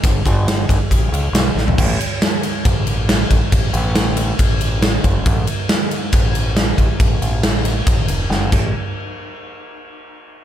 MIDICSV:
0, 0, Header, 1, 3, 480
1, 0, Start_track
1, 0, Tempo, 435414
1, 36, Time_signature, 4, 2, 24, 8
1, 11511, End_track
2, 0, Start_track
2, 0, Title_t, "Fingered electric bass"
2, 0, Program_c, 0, 33
2, 43, Note_on_c, 0, 31, 87
2, 255, Note_off_c, 0, 31, 0
2, 285, Note_on_c, 0, 31, 105
2, 711, Note_off_c, 0, 31, 0
2, 761, Note_on_c, 0, 31, 88
2, 866, Note_off_c, 0, 31, 0
2, 998, Note_on_c, 0, 33, 98
2, 1212, Note_off_c, 0, 33, 0
2, 1235, Note_on_c, 0, 37, 86
2, 1451, Note_off_c, 0, 37, 0
2, 1464, Note_on_c, 0, 35, 86
2, 1685, Note_off_c, 0, 35, 0
2, 1707, Note_on_c, 0, 33, 87
2, 1927, Note_off_c, 0, 33, 0
2, 1966, Note_on_c, 0, 33, 98
2, 2177, Note_off_c, 0, 33, 0
2, 2926, Note_on_c, 0, 33, 84
2, 3566, Note_off_c, 0, 33, 0
2, 3641, Note_on_c, 0, 33, 90
2, 3746, Note_off_c, 0, 33, 0
2, 3884, Note_on_c, 0, 33, 92
2, 4095, Note_off_c, 0, 33, 0
2, 4114, Note_on_c, 0, 33, 97
2, 4760, Note_off_c, 0, 33, 0
2, 4837, Note_on_c, 0, 33, 93
2, 5482, Note_off_c, 0, 33, 0
2, 5554, Note_on_c, 0, 30, 93
2, 5770, Note_off_c, 0, 30, 0
2, 5801, Note_on_c, 0, 33, 109
2, 6013, Note_off_c, 0, 33, 0
2, 6751, Note_on_c, 0, 33, 86
2, 7398, Note_off_c, 0, 33, 0
2, 7473, Note_on_c, 0, 33, 94
2, 7581, Note_off_c, 0, 33, 0
2, 7711, Note_on_c, 0, 33, 93
2, 7928, Note_off_c, 0, 33, 0
2, 7955, Note_on_c, 0, 33, 92
2, 8601, Note_off_c, 0, 33, 0
2, 8668, Note_on_c, 0, 33, 84
2, 8886, Note_off_c, 0, 33, 0
2, 8910, Note_on_c, 0, 28, 82
2, 9128, Note_off_c, 0, 28, 0
2, 9147, Note_on_c, 0, 30, 81
2, 9367, Note_off_c, 0, 30, 0
2, 9399, Note_on_c, 0, 33, 98
2, 9620, Note_off_c, 0, 33, 0
2, 11511, End_track
3, 0, Start_track
3, 0, Title_t, "Drums"
3, 40, Note_on_c, 9, 36, 114
3, 43, Note_on_c, 9, 51, 92
3, 150, Note_off_c, 9, 36, 0
3, 154, Note_off_c, 9, 51, 0
3, 282, Note_on_c, 9, 36, 88
3, 291, Note_on_c, 9, 51, 68
3, 392, Note_off_c, 9, 36, 0
3, 401, Note_off_c, 9, 51, 0
3, 530, Note_on_c, 9, 51, 94
3, 531, Note_on_c, 9, 38, 105
3, 640, Note_off_c, 9, 51, 0
3, 641, Note_off_c, 9, 38, 0
3, 763, Note_on_c, 9, 36, 94
3, 773, Note_on_c, 9, 51, 82
3, 873, Note_off_c, 9, 36, 0
3, 883, Note_off_c, 9, 51, 0
3, 1004, Note_on_c, 9, 36, 87
3, 1009, Note_on_c, 9, 51, 101
3, 1114, Note_off_c, 9, 36, 0
3, 1119, Note_off_c, 9, 51, 0
3, 1253, Note_on_c, 9, 51, 76
3, 1363, Note_off_c, 9, 51, 0
3, 1486, Note_on_c, 9, 51, 93
3, 1488, Note_on_c, 9, 38, 102
3, 1597, Note_off_c, 9, 51, 0
3, 1598, Note_off_c, 9, 38, 0
3, 1736, Note_on_c, 9, 38, 57
3, 1847, Note_off_c, 9, 38, 0
3, 1852, Note_on_c, 9, 43, 81
3, 1962, Note_off_c, 9, 43, 0
3, 1966, Note_on_c, 9, 36, 116
3, 1970, Note_on_c, 9, 49, 124
3, 2076, Note_off_c, 9, 36, 0
3, 2081, Note_off_c, 9, 49, 0
3, 2210, Note_on_c, 9, 51, 73
3, 2321, Note_off_c, 9, 51, 0
3, 2446, Note_on_c, 9, 51, 96
3, 2447, Note_on_c, 9, 38, 114
3, 2556, Note_off_c, 9, 51, 0
3, 2557, Note_off_c, 9, 38, 0
3, 2682, Note_on_c, 9, 51, 75
3, 2792, Note_off_c, 9, 51, 0
3, 2922, Note_on_c, 9, 51, 90
3, 2924, Note_on_c, 9, 36, 118
3, 3032, Note_off_c, 9, 51, 0
3, 3035, Note_off_c, 9, 36, 0
3, 3161, Note_on_c, 9, 51, 70
3, 3271, Note_off_c, 9, 51, 0
3, 3406, Note_on_c, 9, 51, 100
3, 3407, Note_on_c, 9, 38, 98
3, 3516, Note_off_c, 9, 51, 0
3, 3517, Note_off_c, 9, 38, 0
3, 3643, Note_on_c, 9, 51, 68
3, 3645, Note_on_c, 9, 36, 83
3, 3753, Note_off_c, 9, 51, 0
3, 3755, Note_off_c, 9, 36, 0
3, 3881, Note_on_c, 9, 51, 100
3, 3885, Note_on_c, 9, 36, 108
3, 3991, Note_off_c, 9, 51, 0
3, 3995, Note_off_c, 9, 36, 0
3, 4120, Note_on_c, 9, 51, 75
3, 4230, Note_off_c, 9, 51, 0
3, 4359, Note_on_c, 9, 51, 98
3, 4360, Note_on_c, 9, 38, 108
3, 4469, Note_off_c, 9, 51, 0
3, 4471, Note_off_c, 9, 38, 0
3, 4594, Note_on_c, 9, 51, 83
3, 4704, Note_off_c, 9, 51, 0
3, 4838, Note_on_c, 9, 51, 102
3, 4842, Note_on_c, 9, 36, 107
3, 4949, Note_off_c, 9, 51, 0
3, 4952, Note_off_c, 9, 36, 0
3, 5079, Note_on_c, 9, 51, 79
3, 5189, Note_off_c, 9, 51, 0
3, 5318, Note_on_c, 9, 51, 101
3, 5319, Note_on_c, 9, 38, 102
3, 5428, Note_off_c, 9, 51, 0
3, 5429, Note_off_c, 9, 38, 0
3, 5557, Note_on_c, 9, 51, 67
3, 5559, Note_on_c, 9, 36, 85
3, 5667, Note_off_c, 9, 51, 0
3, 5669, Note_off_c, 9, 36, 0
3, 5796, Note_on_c, 9, 51, 102
3, 5798, Note_on_c, 9, 36, 122
3, 5906, Note_off_c, 9, 51, 0
3, 5908, Note_off_c, 9, 36, 0
3, 6033, Note_on_c, 9, 51, 76
3, 6143, Note_off_c, 9, 51, 0
3, 6275, Note_on_c, 9, 51, 92
3, 6276, Note_on_c, 9, 38, 115
3, 6386, Note_off_c, 9, 51, 0
3, 6387, Note_off_c, 9, 38, 0
3, 6518, Note_on_c, 9, 51, 75
3, 6628, Note_off_c, 9, 51, 0
3, 6752, Note_on_c, 9, 51, 99
3, 6757, Note_on_c, 9, 36, 110
3, 6862, Note_off_c, 9, 51, 0
3, 6867, Note_off_c, 9, 36, 0
3, 7000, Note_on_c, 9, 51, 73
3, 7110, Note_off_c, 9, 51, 0
3, 7237, Note_on_c, 9, 51, 91
3, 7238, Note_on_c, 9, 38, 99
3, 7347, Note_off_c, 9, 51, 0
3, 7348, Note_off_c, 9, 38, 0
3, 7476, Note_on_c, 9, 36, 79
3, 7477, Note_on_c, 9, 51, 60
3, 7586, Note_off_c, 9, 36, 0
3, 7588, Note_off_c, 9, 51, 0
3, 7716, Note_on_c, 9, 36, 118
3, 7716, Note_on_c, 9, 51, 101
3, 7826, Note_off_c, 9, 36, 0
3, 7826, Note_off_c, 9, 51, 0
3, 7960, Note_on_c, 9, 51, 72
3, 8070, Note_off_c, 9, 51, 0
3, 8195, Note_on_c, 9, 51, 102
3, 8196, Note_on_c, 9, 38, 112
3, 8305, Note_off_c, 9, 51, 0
3, 8306, Note_off_c, 9, 38, 0
3, 8433, Note_on_c, 9, 51, 81
3, 8543, Note_off_c, 9, 51, 0
3, 8674, Note_on_c, 9, 36, 120
3, 8674, Note_on_c, 9, 51, 101
3, 8784, Note_off_c, 9, 36, 0
3, 8784, Note_off_c, 9, 51, 0
3, 8911, Note_on_c, 9, 51, 80
3, 9021, Note_off_c, 9, 51, 0
3, 9160, Note_on_c, 9, 38, 60
3, 9270, Note_off_c, 9, 38, 0
3, 9396, Note_on_c, 9, 36, 99
3, 9396, Note_on_c, 9, 49, 88
3, 9506, Note_off_c, 9, 36, 0
3, 9507, Note_off_c, 9, 49, 0
3, 11511, End_track
0, 0, End_of_file